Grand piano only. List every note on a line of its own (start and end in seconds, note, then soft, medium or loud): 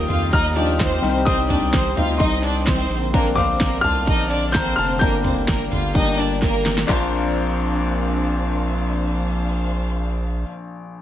0.00 0.55 F3 medium
0.00 0.55 G3 medium
0.00 0.56 D#4 medium
0.00 0.30 G5 medium
0.00 0.35 D#6 loud
0.33 1.23 A#5 medium
0.33 1.30 F6 loud
0.56 0.77 F3 medium
0.56 0.77 G3 soft
0.56 0.78 D#4 medium
1.02 1.34 G3 medium
1.02 1.34 C4 medium
1.02 1.34 D#4 medium
1.25 2.17 G5 medium
1.25 2.16 D#6 loud
1.97 2.18 G3 soft
1.97 2.18 C4 soft
1.97 2.18 D#4 medium
2.18 2.87 D#5 medium
2.18 2.85 C6 medium
3.13 4.97 A#3 medium
3.13 4.97 C4 medium
3.13 4.98 D4 medium
3.36 3.81 F5 medium
3.36 3.80 D6 loud
3.81 4.51 A5 medium
3.81 4.55 F6 loud
4.52 4.77 A#5 medium
4.52 4.78 G6 loud
4.76 5.00 A5 medium
4.76 4.99 F6 loud
4.99 5.68 G3 medium
4.99 5.68 A#3 medium
4.99 5.69 D4 medium
4.99 6.38 A#5 medium
4.99 6.37 G6 loud
5.94 6.16 G3 soft
5.94 6.16 A#3 soft
5.94 6.16 D4 soft
6.87 10.45 A#1 medium
6.87 10.43 D4 medium
6.87 10.44 F4 medium
6.87 10.46 A#4 medium
6.92 10.47 C5 medium